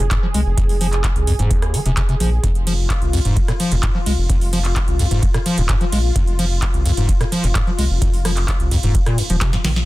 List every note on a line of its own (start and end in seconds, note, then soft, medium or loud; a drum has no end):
0.00 2.45 G#4 medium
0.11 0.18 G#2 medium
0.11 kick loud
0.11 clap loud
0.11 closed hi-hat medium
0.23 0.27 F3 medium
0.34 0.44 C2 medium
0.34 0.41 G#3 medium
0.34 open hi-hat loud
0.46 0.55 F1 medium
0.57 1.12 F1 loud
0.57 0.64 F2 loud
0.57 kick loud
0.57 closed hi-hat medium
0.69 open hi-hat medium
0.81 0.87 F3 medium
0.81 open hi-hat loud
0.93 clap soft
0.93 closed hi-hat soft
1.04 kick loud
1.04 clap loud
1.04 closed hi-hat medium
1.16 1.35 C2 medium
1.16 closed hi-hat soft
1.27 1.34 F2 medium
1.27 open hi-hat loud
1.39 1.48 F1 medium
1.39 1.52 G#2 medium
1.39 closed hi-hat medium
1.51 1.75 D#2 loud
1.51 kick loud
1.51 closed hi-hat medium
1.62 cross-stick medium
1.62 closed hi-hat soft
1.74 1.80 F3 loud
1.74 open hi-hat loud
1.86 1.95 D#1 loud
1.86 1.92 C3 medium
1.86 closed hi-hat medium
1.97 2.01 C3 medium
1.97 kick loud
1.97 clap loud
1.97 closed hi-hat medium
2.09 2.15 C3 medium
2.09 closed hi-hat soft
2.20 2.39 A#1 loud
2.20 2.30 F3 medium
2.20 open hi-hat loud
2.43 2.98 F1 loud
2.43 2.50 F2 loud
2.43 9.85 F4 medium
2.43 kick loud
2.43 closed hi-hat medium
2.55 closed hi-hat soft
2.67 2.73 F3 medium
2.67 open hi-hat loud
2.67 ride medium
2.90 kick loud
2.90 clap loud
2.90 closed hi-hat medium
3.02 3.21 C2 medium
3.02 closed hi-hat soft
3.13 3.20 F2 medium
3.13 open hi-hat loud
3.13 ride medium
3.25 3.34 F1 medium
3.25 3.38 G#2 medium
3.25 closed hi-hat medium
3.37 3.40 D#2 loud
3.37 kick loud
3.37 closed hi-hat medium
3.48 3.52 A#2 loud
3.48 cross-stick medium
3.48 closed hi-hat soft
3.60 3.73 F3 medium
3.60 open hi-hat loud
3.60 ride medium
3.72 3.81 F1 loud
3.72 3.75 F2 medium
3.72 closed hi-hat medium
3.83 3.90 G#2 medium
3.83 kick loud
3.83 clap loud
3.83 closed hi-hat medium
3.95 3.99 F3 medium
4.06 4.16 C2 medium
4.06 4.13 G#3 medium
4.06 open hi-hat loud
4.06 ride medium
4.18 4.27 F1 medium
4.29 4.84 F1 loud
4.29 4.36 F2 loud
4.29 kick loud
4.29 closed hi-hat medium
4.41 open hi-hat medium
4.53 4.59 F3 medium
4.53 open hi-hat loud
4.53 ride medium
4.65 clap soft
4.65 closed hi-hat soft
4.76 kick loud
4.76 clap loud
4.76 closed hi-hat medium
4.88 5.07 C2 medium
4.88 closed hi-hat soft
4.99 5.06 F2 medium
4.99 open hi-hat loud
4.99 ride medium
5.11 5.20 F1 medium
5.11 5.24 G#2 medium
5.11 closed hi-hat medium
5.23 5.26 D#2 loud
5.23 kick loud
5.23 closed hi-hat medium
5.34 5.38 A#2 loud
5.34 cross-stick medium
5.34 closed hi-hat soft
5.46 5.59 F3 medium
5.46 open hi-hat loud
5.46 ride medium
5.58 5.67 D#1 loud
5.58 5.61 F2 medium
5.58 closed hi-hat medium
5.69 5.76 G#2 medium
5.69 kick loud
5.69 clap loud
5.69 closed hi-hat medium
5.81 5.85 F3 medium
5.81 closed hi-hat soft
5.92 6.11 A#1 loud
5.92 5.99 G#3 medium
5.92 open hi-hat loud
5.92 ride medium
6.16 6.70 F1 loud
6.16 6.22 F2 loud
6.16 kick loud
6.16 closed hi-hat medium
6.28 closed hi-hat soft
6.39 6.45 F3 medium
6.39 open hi-hat loud
6.39 ride medium
6.62 kick loud
6.62 clap loud
6.62 closed hi-hat medium
6.74 6.93 C2 medium
6.74 closed hi-hat soft
6.85 6.92 F2 medium
6.85 open hi-hat loud
6.85 ride medium
6.97 7.06 F1 medium
6.97 7.10 G#2 medium
6.97 closed hi-hat medium
7.09 7.13 D#2 loud
7.09 kick loud
7.09 closed hi-hat medium
7.20 7.24 A#2 loud
7.20 cross-stick medium
7.20 closed hi-hat soft
7.32 7.45 F3 medium
7.32 open hi-hat loud
7.32 ride medium
7.44 7.53 F1 loud
7.44 7.47 F2 medium
7.44 closed hi-hat medium
7.55 7.62 G#2 medium
7.55 kick loud
7.55 clap loud
7.55 closed hi-hat medium
7.67 7.71 F3 medium
7.78 7.88 C2 medium
7.78 7.85 G#3 medium
7.78 open hi-hat loud
7.78 ride medium
7.90 8.00 F1 medium
8.02 8.56 F1 loud
8.02 8.08 F2 loud
8.02 kick loud
8.02 closed hi-hat medium
8.14 open hi-hat medium
8.25 8.31 F3 medium
8.25 cross-stick medium
8.25 open hi-hat loud
8.25 ride medium
8.37 clap soft
8.37 closed hi-hat soft
8.48 kick loud
8.48 clap loud
8.48 closed hi-hat medium
8.60 8.79 C2 medium
8.60 closed hi-hat soft
8.71 8.78 F2 medium
8.71 open hi-hat loud
8.71 ride medium
8.83 8.93 F1 medium
8.83 8.96 G#2 medium
8.83 closed hi-hat medium
8.95 8.99 D#2 loud
8.95 kick loud
8.95 closed hi-hat medium
9.06 9.20 A#2 loud
9.06 cross-stick medium
9.06 closed hi-hat soft
9.18 9.22 F2 medium
9.18 open hi-hat loud
9.18 ride medium
9.30 9.39 D#1 loud
9.30 9.36 F3 medium
9.30 closed hi-hat medium
9.41 9.51 C3 medium
9.41 kick loud
9.41 snare medium
9.41 clap loud
9.41 closed hi-hat medium
9.53 9.57 G#2 medium
9.53 snare medium
9.53 closed hi-hat soft
9.64 9.83 A#1 loud
9.64 9.71 D#3 loud
9.64 snare medium
9.64 open hi-hat loud
9.64 ride medium
9.76 snare medium
9.76 closed hi-hat soft